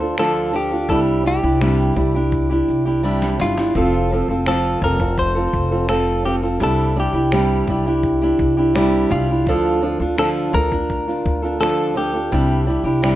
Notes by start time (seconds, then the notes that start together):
Already playing: D2 C5
0.00 D4 F4 A4, shaker
0.18 D3 F3 D4 F4 A4, finger snap, shaker
0.36 shaker
0.53 F3 D4 F4 G4 A4, shaker
0.71 D4 F4 A4, shaker
0.88 C2 C3 G3 D4 E4 G4 A4, kick, shaker
1.07 shaker
1.25 G3 D4 E4 G4, shaker
1.43 C2 D4 E4 G4, shaker
1.61 C3 G3 D4 E4 G4, finger snap, shaker
1.79 shaker
1.96 C2 G3 D4 E4 G4, kick
2.14 D4 E4 G4, shaker
2.32 kick, shaker
2.49 D4 E4 G4, shaker
2.68 C2, shaker
2.85 D4 E4 G4, shaker
3.03 C3 G3 D4 E4 G4, shaker
3.22 snare, shaker
3.39 G1 G3 D4 E4 F4 G4, snare, shaker
3.57 D4 E4 G4, snare, shaker
3.75 F1 F3 C4 F4 A4, kick, shaker
3.94 shaker
4.12 F3 C4 F4 A4
4.28 F1 C4 F4 A4, shaker
4.46 F3 C4 F4 A4, finger snap, shaker
4.65 shaker
4.81 F1 F3 C4 F4 A4 A#4, kick, shaker
5.00 C4 F4 A4, kick, shaker
5.17 C5, kick, shaker
5.35 C4 F4 A4, shaker
5.53 F1, kick, shaker
5.71 C4 F4 A4, shaker
5.88 F3 C4 F4 A4, finger snap, shaker
6.07 shaker
6.25 F3 C4 F4 G4 A4, shaker
6.42 C4 F4 A4, shaker
6.60 C2 C3 G3 D4 E4 G4 A4, kick, shaker
6.78 shaker
6.96 G3 D4 E4 G4
7.00 G4
7.13 C2 D4 E4 G4, shaker
7.32 C3 G3 D4 E4 G4, finger snap, shaker
7.50 shaker
7.66 C2 G3 D4 E4 G4, kick, shaker
7.86 D4 E4 G4, shaker
8.03 kick, shaker
8.21 D4 E4 G4, shaker
8.39 C2, kick, shaker
8.57 D4 E4 G4, shaker
8.74 C3 G3 D4 E4 G4, finger snap, shaker
8.94 shaker
9.11 C2 G3 D4 E4 F4 G4, kick, shaker
9.29 D4 E4 G4, shaker
9.46 D2 D3 F3 D4 F4 A4, kick, shaker
9.65 shaker
9.82 F3 D4 F4 A4
9.99 D2 D4 F4 A4, shaker
10.18 D3 F3 D4 F4 A4, finger snap, shaker
10.38 shaker
10.53 D2 F3 D4 F4 A4 A#4, kick, shaker
10.72 D4 F4, kick, shaker
10.90 kick, shaker
11.08 D4 F4, shaker
11.26 D2, kick, shaker
11.42 D4 F4 A4, shaker
11.60 D3 F3 D4 F4 A4, finger snap, shaker
11.81 shaker
11.95 F3 D4 F4 G4 A4, shaker
12.14 D4 F4 A4, shaker
12.32 C2 C3 G3 D4 E4 G4, kick, shaker
12.51 shaker
12.67 G3 D4 E4 G4, shaker
12.84 C2 D4 E4 G4, shaker
13.02 C3 G3 D4 E4 G4, finger snap, shaker